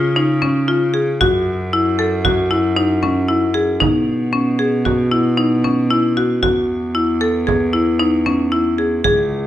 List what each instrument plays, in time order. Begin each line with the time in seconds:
Already playing: cello C#3
0.16 marimba D#4
0.42 marimba C#4, frame drum
0.68 marimba F4
0.94 marimba G#4
1.21 cello F#2, marimba F#4, frame drum
1.47 frame drum
1.73 marimba E4
1.99 marimba A4
2.25 marimba F#4, frame drum
2.51 marimba E4, frame drum
2.76 marimba D#4
3.03 marimba C#4, frame drum
3.28 marimba E4
3.54 marimba G#4
3.80 cello B2, marimba D#4, frame drum
4.08 frame drum
4.33 marimba C#4
4.59 marimba G#4
4.85 marimba F#4, frame drum
5.11 marimba E4, frame drum
5.37 marimba D#4
5.64 marimba C#4, frame drum
5.90 marimba E4, frame drum
6.17 marimba F#4, frame drum
6.43 cello E2, marimba F#4, frame drum
6.70 frame drum
6.95 marimba E4
7.21 marimba A4
7.47 marimba G#4, frame drum
7.73 marimba E4, frame drum
7.99 marimba D#4
8.26 marimba C#4, frame drum
8.52 marimba E4
8.78 marimba G#4
9.04 cello C#2, marimba G#4, frame drum
9.31 frame drum